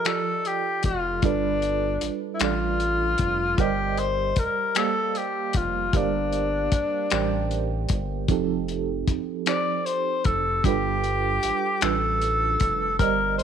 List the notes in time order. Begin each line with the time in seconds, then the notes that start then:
Already playing: F3 F4 G4 A4 D#5
0.05 F3 F4 G4 A4 D5, finger snap, closed hi-hat
0.45 G4, closed hi-hat
0.83 F1 F4, kick, closed hi-hat
1.22 G1 G3 D4 F4 A4 B4, kick, closed hi-hat
1.62 closed hi-hat
2.01 A1, closed hi-hat
2.34 E4
2.40 A1 G3 D4 F4 A4, finger snap, closed hi-hat
2.44 D5
2.80 closed hi-hat
3.18 F1, kick, closed hi-hat
3.58 G1 G3 G4 A#4 C5 D5 D#5, kick, closed hi-hat
3.98 C5, closed hi-hat
4.36 F1 A#4, kick, closed hi-hat
4.75 G3 A#3 G4 A4 C5 D5 F5, finger snap, closed hi-hat
5.15 G4, closed hi-hat
5.53 F1 F4, kick, closed hi-hat
5.93 G1 G3 D4 G4 A#4 C5 D5 F5, kick, closed hi-hat
6.33 closed hi-hat
6.72 A1, kick, closed hi-hat
7.10 A1 G3 G4 A#4 C5 D5 G5, finger snap, closed hi-hat
7.51 closed hi-hat
7.89 G1, kick, closed hi-hat
8.28 F1 F3 C4 D#4 G4 A4, kick, closed hi-hat
8.68 closed hi-hat
9.08 F1, kick, closed hi-hat
9.46 F3 C4 D#4 G4 C5 D5, finger snap, closed hi-hat
9.86 C5, closed hi-hat
10.24 F1 A4, kick, closed hi-hat
10.64 G1 G3 D4 F4 G4 A4 B4, kick, closed hi-hat
11.04 closed hi-hat
11.43 A1, closed hi-hat
11.81 A1 G3 D4 F4 A4 B4, finger snap, closed hi-hat
12.21 closed hi-hat
12.60 F1, kick, closed hi-hat
12.99 G1 G3 G4 A#4 C5 D5 D#5, kick, closed hi-hat
13.38 C5, closed hi-hat